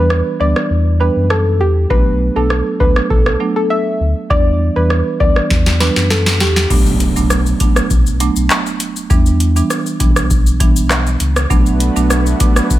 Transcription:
Already playing: sub bass E2, marimba E3 G3 B3 D4
0.10 cross-stick
0.40 sub bass D2, marimba E3 G3 B3 D4, synth pluck D5
0.56 cross-stick
0.70 sub bass E2
1.00 marimba E3 G3 B3 D4, synth pluck B4
1.16 sub bass F#2
1.30 synth pluck A4, cross-stick
1.60 sub bass E2, synth pluck G4
1.90 sub bass B1, marimba F#3 A3 B3 D4, synth pluck B4, kick
2.36 sub bass B1, marimba F#3 A3 B3 D4, synth pluck A4
2.50 cross-stick
2.80 sub bass D2, marimba F#3 A3 B3 D4, synth pluck B4, kick
2.96 cross-stick
3.10 sub bass B1, synth pluck A4, kick
3.26 cross-stick
3.40 marimba F#3 A3 B3 D4
3.56 synth pluck A4
3.70 synth pluck E5
4.00 sub bass D2
4.30 sub bass E2, marimba E3 G3 B3 D4, synth pluck D5, kick
4.76 sub bass E2, marimba E3 G3 B3 D4, synth pluck B4
4.90 cross-stick
5.20 sub bass D2, marimba E3 G3 B3 D4, synth pluck D5, kick
5.36 cross-stick
5.50 sub bass E2, kick, snare
5.66 snare
5.80 marimba E3 G3 B3 D4, synth pluck B4, snare
5.96 sub bass F#2, snare
6.10 synth pluck A4, snare
6.26 snare
6.40 sub bass E2, synth pluck G4, snare
6.56 snare
6.70 sub bass B1, marimba F#3 A3 B3 D4, kick, crash, impact, shaker
6.86 shaker
7.00 closed hi-hat, shaker
7.16 sub bass B1, marimba F#3 A3 B3 D4, shaker
7.30 cross-stick, shaker
7.46 shaker
7.60 marimba F#3 A3 B3 D4, kick, closed hi-hat, shaker
7.76 cross-stick, shaker
7.90 sub bass B1, kick, shaker
8.06 shaker
8.20 marimba F#3 A3 B3 D4, closed hi-hat, shaker
8.36 sub bass B1, shaker
8.50 clap, shaker
8.66 shaker
8.80 closed hi-hat, shaker
8.96 shaker
9.10 sub bass E2, marimba E3 G3 B3 D4, kick, shaker
9.26 shaker
9.40 closed hi-hat, shaker
9.56 marimba E3 G3 B3 D4, shaker
9.70 cross-stick, shaker
9.86 shaker
10.00 sub bass B1, marimba E3 G3 B3 D4, kick, closed hi-hat, shaker
10.16 cross-stick, shaker
10.30 kick, shaker
10.47 shaker
10.60 marimba E3 G3 B3 D4, kick, closed hi-hat, shaker
10.76 shaker
10.90 cross-stick, clap, shaker
11.06 shaker
11.20 sub bass C#2, closed hi-hat, shaker
11.36 cross-stick, shaker
11.50 sub bass B1, marimba F#3 A3 B3 D4, analog synth pad A3 B3 D4 F#4 B4, kick, shaker
11.66 shaker
11.80 closed hi-hat, shaker
11.96 sub bass B1, marimba F#3 A3 B3 D4, shaker
12.10 cross-stick, shaker
12.26 shaker
12.40 marimba F#3 A3 B3 D4, kick, closed hi-hat, shaker
12.56 cross-stick, shaker
12.70 sub bass B1, kick, shaker

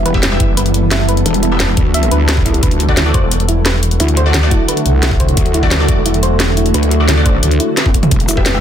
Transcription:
Already playing: wobble bass E1, synth drone E3 G3 B3 A4, ambient pad E4 B4 A5
0.06 synth pluck B4, closed hi-hat
0.14 synth stab B3 G4 E5, kick
0.23 fm bass E1, snare, closed hi-hat
0.31 synth stab B3 G4 E5
0.40 fm bass F#1, synth pluck E4, kick, closed hi-hat
0.57 synth pluck B4, closed hi-hat
0.66 closed hi-hat
0.74 closed hi-hat
0.91 synth pluck E5, snare, closed hi-hat
1.09 synth pluck B4, closed hi-hat
1.17 closed hi-hat
1.26 wobble bass E1, closed hi-hat
1.34 closed hi-hat
1.43 synth pluck E4, closed hi-hat
1.51 synth stab B3 G4 E5
1.60 fm bass E1, synth pluck B4, snare, closed hi-hat
1.77 wobble bass D2, kick, closed hi-hat
1.94 synth pluck E5, closed hi-hat
2.03 closed hi-hat
2.11 wobble bass D2, synth pluck B4, closed hi-hat
2.29 snare, closed hi-hat
2.37 kick
2.46 synth pluck E4, kick, closed hi-hat
2.54 closed hi-hat
2.63 wobble bass D2, synth drone D3 F#3 A3 F#4, ambient pad D4, synth pluck B4, kick, closed hi-hat
2.71 ambient pad F#5, closed hi-hat
2.80 closed hi-hat
2.85 synth stab A3 F#4 D5, ambient pad A4, kick
2.97 fm bass D2, synth pluck E4, snare, closed hi-hat
3.03 synth stab A3 F#4 D5, ambient pad E5
3.14 fm bass E1, synth pluck C5, kick, closed hi-hat
3.31 closed hi-hat
3.40 closed hi-hat
3.49 synth pluck E4, closed hi-hat
3.66 synth pluck B4, snare, closed hi-hat
3.83 closed hi-hat
3.91 closed hi-hat
4.00 wobble bass D2, synth pluck E4, closed hi-hat
4.08 closed hi-hat
4.17 synth pluck C5, closed hi-hat
4.26 synth stab A3 F#4 D5
4.34 fm bass D2, snare, closed hi-hat
4.43 synth stab A3 F#4 D5
4.51 synth pluck E4, kick, closed hi-hat
4.68 synth pluck B4, closed hi-hat
4.77 closed hi-hat
4.86 fm bass C2, closed hi-hat
5.03 synth pluck E4, snare, closed hi-hat
5.11 kick
5.20 synth pluck C5, kick, closed hi-hat
5.29 closed hi-hat
5.37 wobble bass D2, kick, closed hi-hat
5.46 closed hi-hat
5.54 synth pluck E4, closed hi-hat
5.63 synth stab A3 F#4 D5, kick
5.71 fm bass D2, synth pluck B4, snare, closed hi-hat
5.80 synth stab A3 F#4 D5
5.88 fm bass E1, kick, closed hi-hat
6.06 synth pluck E4, closed hi-hat
6.14 closed hi-hat
6.23 synth pluck C5, closed hi-hat
6.40 snare, closed hi-hat
6.57 synth pluck E4, closed hi-hat
6.66 closed hi-hat
6.74 wobble bass D2, synth pluck B4, closed hi-hat
6.83 closed hi-hat
6.91 closed hi-hat
7.00 synth stab A3 F#4 D5
7.08 fm bass D2, synth pluck E4, snare, closed hi-hat
7.17 synth stab A3 F#4 D5
7.26 wobble bass A1, synth pluck C5, kick, closed hi-hat
7.43 fm bass D2, closed hi-hat
7.51 closed hi-hat
7.60 synth pluck E4, closed hi-hat
7.77 synth pluck B4, snare, closed hi-hat
7.86 kick, high tom
7.94 kick, closed hi-hat
8.03 closed hi-hat, mid tom
8.11 wobble bass E1, synth drone E3 G3 B3 G4, ambient pad E4, kick, closed hi-hat
8.20 closed hi-hat
8.25 synth pluck E4, ambient pad B4, closed hi-hat, shaker
8.37 synth stab B3 G4 E5, kick
8.46 fm bass E1, synth pluck B4, snare, closed hi-hat, shaker
8.54 synth stab B3 G4 E5

